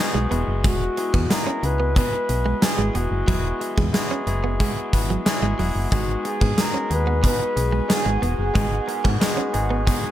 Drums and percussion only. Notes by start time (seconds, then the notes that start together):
0.32 closed hi-hat
0.64 kick, closed hi-hat
0.97 closed hi-hat
1.14 kick
1.30 snare, closed hi-hat, tambourine
1.63 closed hi-hat
1.96 kick, closed hi-hat
2.29 closed hi-hat
2.62 snare, closed hi-hat, tambourine
2.95 closed hi-hat
3.28 kick, closed hi-hat
3.61 closed hi-hat
3.78 kick
3.94 snare, closed hi-hat, tambourine
4.27 closed hi-hat
4.60 kick, closed hi-hat
4.93 kick, closed hi-hat
5.26 snare, closed hi-hat, tambourine
5.59 open hi-hat
5.92 kick, closed hi-hat
6.25 closed hi-hat
6.41 kick
6.58 snare, closed hi-hat, tambourine
6.91 closed hi-hat
7.24 kick, closed hi-hat
7.57 closed hi-hat
7.90 snare, closed hi-hat, tambourine
8.23 closed hi-hat
8.55 kick, closed hi-hat
8.89 closed hi-hat
9.05 kick
9.21 snare, closed hi-hat, tambourine
9.54 closed hi-hat
9.87 kick, closed hi-hat